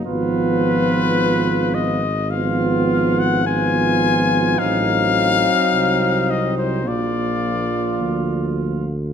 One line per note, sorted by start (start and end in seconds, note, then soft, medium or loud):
0.05 4.56 G#1 medium
0.05 2.01 F3 medium
0.05 2.00 B3 medium
0.05 2.00 F4 medium
0.05 1.76 B4 medium
1.74 2.32 D#5 medium
2.30 3.43 F3 medium
2.30 3.42 B3 medium
2.30 3.42 F4 medium
2.30 3.21 F5 medium
3.19 3.46 F#5 medium
3.45 4.62 F3 medium
3.45 4.60 B3 medium
3.45 4.60 F4 medium
3.45 4.60 G#5 medium
4.58 5.44 A1 medium
4.58 6.84 F#3 medium
4.58 6.84 C4 medium
4.58 6.85 D#4 medium
4.58 6.32 F5 loud
5.73 6.87 C2 medium
6.30 6.57 D#5 medium
6.58 6.89 C5 medium
6.85 8.00 A#1 medium
6.85 8.86 F3 medium
6.85 8.86 A#3 medium
6.85 8.87 F4 medium
6.85 8.61 D5 medium
8.01 9.13 D2 medium